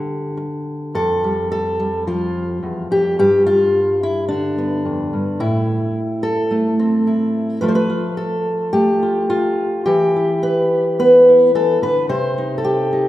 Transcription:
0, 0, Header, 1, 3, 480
1, 0, Start_track
1, 0, Tempo, 566038
1, 806, Time_signature, 4, 2, 24, 8
1, 2234, Tempo, 552486
1, 5594, Tempo, 558659
1, 11249, End_track
2, 0, Start_track
2, 0, Title_t, "Steel-string acoustic guitar"
2, 0, Program_c, 0, 25
2, 0, Note_on_c, 0, 50, 62
2, 0, Note_on_c, 0, 67, 80
2, 802, Note_on_c, 0, 41, 77
2, 804, Note_off_c, 0, 67, 0
2, 805, Note_off_c, 0, 50, 0
2, 807, Note_on_c, 0, 69, 97
2, 1051, Note_on_c, 0, 55, 45
2, 1275, Note_off_c, 0, 69, 0
2, 1285, Note_on_c, 0, 69, 99
2, 1519, Note_off_c, 0, 55, 0
2, 1523, Note_on_c, 0, 55, 48
2, 1756, Note_off_c, 0, 69, 0
2, 1757, Note_on_c, 0, 53, 65
2, 1760, Note_on_c, 0, 65, 78
2, 2224, Note_off_c, 0, 41, 0
2, 2227, Note_on_c, 0, 40, 57
2, 2470, Note_off_c, 0, 40, 0
2, 2473, Note_on_c, 0, 41, 53
2, 2476, Note_off_c, 0, 65, 0
2, 2479, Note_on_c, 0, 67, 98
2, 2688, Note_off_c, 0, 53, 0
2, 2711, Note_off_c, 0, 67, 0
2, 2716, Note_on_c, 0, 43, 78
2, 2717, Note_off_c, 0, 41, 0
2, 2721, Note_on_c, 0, 67, 102
2, 2952, Note_off_c, 0, 67, 0
2, 2956, Note_on_c, 0, 65, 91
2, 3437, Note_off_c, 0, 65, 0
2, 3449, Note_on_c, 0, 64, 86
2, 3664, Note_off_c, 0, 64, 0
2, 3668, Note_on_c, 0, 62, 88
2, 3684, Note_on_c, 0, 50, 64
2, 3918, Note_off_c, 0, 55, 0
2, 3927, Note_on_c, 0, 59, 51
2, 4161, Note_on_c, 0, 41, 59
2, 4392, Note_off_c, 0, 43, 0
2, 4398, Note_off_c, 0, 41, 0
2, 4403, Note_on_c, 0, 43, 51
2, 4611, Note_off_c, 0, 59, 0
2, 4630, Note_off_c, 0, 62, 0
2, 4636, Note_on_c, 0, 45, 85
2, 4638, Note_off_c, 0, 43, 0
2, 4638, Note_off_c, 0, 50, 0
2, 4640, Note_on_c, 0, 64, 82
2, 5357, Note_on_c, 0, 69, 99
2, 5601, Note_on_c, 0, 57, 70
2, 5834, Note_off_c, 0, 64, 0
2, 5845, Note_on_c, 0, 60, 49
2, 6083, Note_on_c, 0, 64, 47
2, 6527, Note_off_c, 0, 45, 0
2, 6528, Note_off_c, 0, 57, 0
2, 6530, Note_off_c, 0, 64, 0
2, 6532, Note_off_c, 0, 60, 0
2, 6542, Note_off_c, 0, 69, 0
2, 6545, Note_on_c, 0, 71, 95
2, 6553, Note_on_c, 0, 53, 79
2, 6561, Note_on_c, 0, 57, 50
2, 6565, Note_on_c, 0, 65, 55
2, 6571, Note_on_c, 0, 69, 53
2, 6607, Note_off_c, 0, 71, 0
2, 6610, Note_on_c, 0, 72, 87
2, 6664, Note_off_c, 0, 72, 0
2, 6667, Note_on_c, 0, 71, 99
2, 6782, Note_off_c, 0, 65, 0
2, 6792, Note_on_c, 0, 65, 46
2, 7019, Note_off_c, 0, 69, 0
2, 7025, Note_off_c, 0, 71, 0
2, 7029, Note_on_c, 0, 69, 85
2, 7504, Note_off_c, 0, 57, 0
2, 7507, Note_on_c, 0, 67, 96
2, 7514, Note_on_c, 0, 57, 67
2, 7752, Note_off_c, 0, 65, 0
2, 7763, Note_on_c, 0, 65, 47
2, 7986, Note_off_c, 0, 65, 0
2, 7996, Note_on_c, 0, 65, 89
2, 7999, Note_off_c, 0, 69, 0
2, 8458, Note_off_c, 0, 57, 0
2, 8459, Note_off_c, 0, 53, 0
2, 8466, Note_off_c, 0, 67, 0
2, 8476, Note_on_c, 0, 67, 90
2, 8486, Note_off_c, 0, 65, 0
2, 8488, Note_on_c, 0, 52, 78
2, 8738, Note_on_c, 0, 64, 41
2, 8969, Note_on_c, 0, 71, 87
2, 9446, Note_off_c, 0, 71, 0
2, 9451, Note_off_c, 0, 67, 0
2, 9453, Note_on_c, 0, 59, 64
2, 9456, Note_on_c, 0, 71, 104
2, 9695, Note_off_c, 0, 64, 0
2, 9705, Note_on_c, 0, 64, 47
2, 9920, Note_off_c, 0, 52, 0
2, 9927, Note_off_c, 0, 59, 0
2, 9931, Note_off_c, 0, 71, 0
2, 9931, Note_on_c, 0, 52, 61
2, 9935, Note_on_c, 0, 69, 101
2, 10161, Note_off_c, 0, 52, 0
2, 10164, Note_on_c, 0, 50, 54
2, 10169, Note_off_c, 0, 69, 0
2, 10172, Note_on_c, 0, 71, 96
2, 10385, Note_off_c, 0, 64, 0
2, 10397, Note_off_c, 0, 71, 0
2, 10397, Note_on_c, 0, 48, 84
2, 10400, Note_on_c, 0, 72, 109
2, 10406, Note_off_c, 0, 50, 0
2, 10645, Note_on_c, 0, 63, 48
2, 10811, Note_off_c, 0, 72, 0
2, 10815, Note_on_c, 0, 69, 75
2, 10872, Note_on_c, 0, 67, 93
2, 11104, Note_off_c, 0, 63, 0
2, 11114, Note_on_c, 0, 63, 49
2, 11249, Note_off_c, 0, 48, 0
2, 11249, Note_off_c, 0, 63, 0
2, 11249, Note_off_c, 0, 67, 0
2, 11249, Note_off_c, 0, 69, 0
2, 11249, End_track
3, 0, Start_track
3, 0, Title_t, "Muted steel-string acoustic guitar strokes"
3, 316, Note_on_c, 9, 29, 64
3, 401, Note_off_c, 9, 29, 0
3, 11249, End_track
0, 0, End_of_file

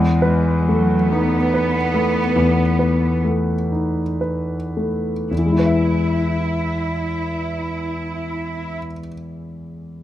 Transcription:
0, 0, Header, 1, 3, 480
1, 0, Start_track
1, 0, Key_signature, 4, "major"
1, 0, Tempo, 867052
1, 839, Tempo, 821918
1, 1319, Tempo, 896861
1, 1799, Tempo, 986842
1, 2279, Tempo, 1088929
1, 2759, Time_signature, 12, 3, 24, 8
1, 2759, Tempo, 933126
1, 3719, Tempo, 961538
1, 5145, End_track
2, 0, Start_track
2, 0, Title_t, "Grand piano"
2, 0, Program_c, 0, 0
2, 0, Note_on_c, 0, 40, 53
2, 13, Control_c, 0, 64, 127
2, 122, Note_on_c, 0, 71, 40
2, 381, Note_on_c, 0, 57, 34
2, 517, Note_off_c, 0, 71, 0
2, 620, Note_on_c, 0, 63, 36
2, 755, Note_off_c, 0, 57, 0
2, 854, Note_on_c, 0, 71, 40
2, 986, Note_off_c, 0, 63, 0
2, 1087, Note_on_c, 0, 57, 32
2, 1228, Note_off_c, 0, 71, 0
2, 1298, Note_off_c, 0, 40, 0
2, 1330, Note_on_c, 0, 40, 34
2, 1463, Note_off_c, 0, 57, 0
2, 1562, Note_on_c, 0, 71, 31
2, 1803, Note_on_c, 0, 57, 26
2, 1942, Note_off_c, 0, 71, 0
2, 2036, Note_on_c, 0, 63, 26
2, 2181, Note_off_c, 0, 57, 0
2, 2274, Note_on_c, 0, 71, 26
2, 2424, Note_off_c, 0, 63, 0
2, 2520, Note_on_c, 0, 57, 18
2, 2667, Note_off_c, 0, 71, 0
2, 2746, Note_off_c, 0, 40, 0
2, 2757, Note_off_c, 0, 57, 0
2, 2759, Note_on_c, 0, 40, 23
2, 2772, Control_c, 0, 64, 0
2, 2798, Note_on_c, 0, 52, 23
2, 2835, Note_on_c, 0, 56, 24
2, 2869, Note_on_c, 0, 64, 23
2, 2881, Control_c, 0, 64, 127
2, 2904, Note_on_c, 0, 71, 26
2, 2939, Note_on_c, 0, 76, 25
2, 4519, Note_off_c, 0, 40, 0
2, 4557, Note_off_c, 0, 52, 0
2, 4593, Note_off_c, 0, 56, 0
2, 4625, Note_off_c, 0, 64, 0
2, 4659, Note_off_c, 0, 71, 0
2, 4694, Note_off_c, 0, 76, 0
2, 5145, End_track
3, 0, Start_track
3, 0, Title_t, "Cello section"
3, 0, Program_c, 1, 48
3, 0, Note_on_c, 1, 56, 54
3, 359, Note_off_c, 1, 56, 0
3, 366, Note_on_c, 1, 54, 54
3, 610, Note_off_c, 1, 54, 0
3, 612, Note_on_c, 1, 59, 63
3, 1800, Note_off_c, 1, 59, 0
3, 2756, Note_on_c, 1, 64, 32
3, 4515, Note_off_c, 1, 64, 0
3, 5145, End_track
0, 0, End_of_file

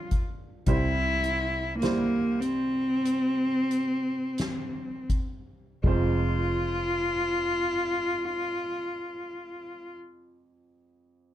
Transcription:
0, 0, Header, 1, 5, 480
1, 0, Start_track
1, 0, Key_signature, -4, "minor"
1, 0, Tempo, 1136364
1, 283, Time_signature, 4, 2, 24, 8
1, 771, Tempo, 1229508
1, 1251, Tempo, 1330377
1, 1731, Tempo, 1452785
1, 2211, Tempo, 1522843
1, 3946, End_track
2, 0, Start_track
2, 0, Title_t, "Cello"
2, 0, Program_c, 0, 42
2, 0, Note_on_c, 0, 65, 105
2, 56, Note_off_c, 0, 65, 0
2, 288, Note_on_c, 0, 64, 104
2, 752, Note_off_c, 0, 64, 0
2, 755, Note_on_c, 0, 58, 85
2, 996, Note_on_c, 0, 60, 84
2, 1002, Note_off_c, 0, 58, 0
2, 1960, Note_off_c, 0, 60, 0
2, 2214, Note_on_c, 0, 65, 100
2, 3497, Note_off_c, 0, 65, 0
2, 3946, End_track
3, 0, Start_track
3, 0, Title_t, "Upright piano"
3, 0, Program_c, 1, 0
3, 0, Control_c, 1, 64, 127
3, 0, Note_on_c, 1, 34, 60
3, 0, Note_on_c, 1, 46, 64
3, 264, Note_off_c, 1, 34, 0
3, 265, Note_off_c, 1, 46, 0
3, 285, Note_on_c, 1, 36, 60
3, 286, Note_on_c, 1, 48, 66
3, 286, Note_on_c, 1, 55, 70
3, 288, Note_on_c, 1, 64, 67
3, 289, Control_c, 1, 64, 0
3, 289, Note_on_c, 1, 72, 79
3, 362, Control_c, 1, 64, 127
3, 653, Note_off_c, 1, 55, 0
3, 655, Note_off_c, 1, 64, 0
3, 655, Note_off_c, 1, 72, 0
3, 770, Note_on_c, 1, 55, 66
3, 771, Note_on_c, 1, 64, 63
3, 773, Note_on_c, 1, 72, 70
3, 1497, Note_off_c, 1, 55, 0
3, 1497, Note_off_c, 1, 64, 0
3, 1498, Note_off_c, 1, 72, 0
3, 2198, Note_off_c, 1, 36, 0
3, 2198, Note_off_c, 1, 48, 0
3, 2209, Note_on_c, 1, 56, 69
3, 2215, Control_c, 1, 64, 0
3, 2218, Note_on_c, 1, 41, 73
3, 2218, Note_on_c, 1, 65, 71
3, 2221, Note_on_c, 1, 72, 82
3, 2272, Control_c, 1, 64, 127
3, 3493, Note_off_c, 1, 56, 0
3, 3501, Note_off_c, 1, 65, 0
3, 3502, Note_off_c, 1, 41, 0
3, 3505, Note_off_c, 1, 72, 0
3, 3946, End_track
4, 0, Start_track
4, 0, Title_t, "Fingered electric bass"
4, 0, Program_c, 2, 33
4, 285, Note_on_c, 2, 36, 69
4, 2198, Note_off_c, 2, 36, 0
4, 2211, Note_on_c, 2, 29, 76
4, 3494, Note_off_c, 2, 29, 0
4, 3946, End_track
5, 0, Start_track
5, 0, Title_t, "Drums"
5, 46, Note_on_c, 9, 42, 44
5, 49, Note_on_c, 9, 36, 66
5, 89, Note_off_c, 9, 42, 0
5, 91, Note_off_c, 9, 36, 0
5, 280, Note_on_c, 9, 42, 65
5, 283, Note_on_c, 9, 36, 94
5, 322, Note_off_c, 9, 42, 0
5, 325, Note_off_c, 9, 36, 0
5, 522, Note_on_c, 9, 42, 49
5, 564, Note_off_c, 9, 42, 0
5, 768, Note_on_c, 9, 42, 74
5, 775, Note_on_c, 9, 38, 91
5, 807, Note_off_c, 9, 42, 0
5, 814, Note_off_c, 9, 38, 0
5, 1002, Note_on_c, 9, 42, 52
5, 1041, Note_off_c, 9, 42, 0
5, 1250, Note_on_c, 9, 42, 71
5, 1286, Note_off_c, 9, 42, 0
5, 1486, Note_on_c, 9, 42, 50
5, 1522, Note_off_c, 9, 42, 0
5, 1728, Note_on_c, 9, 42, 71
5, 1734, Note_on_c, 9, 38, 85
5, 1762, Note_off_c, 9, 42, 0
5, 1768, Note_off_c, 9, 38, 0
5, 1965, Note_on_c, 9, 42, 50
5, 1966, Note_on_c, 9, 36, 63
5, 1998, Note_off_c, 9, 42, 0
5, 1999, Note_off_c, 9, 36, 0
5, 2211, Note_on_c, 9, 49, 64
5, 2212, Note_on_c, 9, 36, 84
5, 2242, Note_off_c, 9, 49, 0
5, 2243, Note_off_c, 9, 36, 0
5, 3946, End_track
0, 0, End_of_file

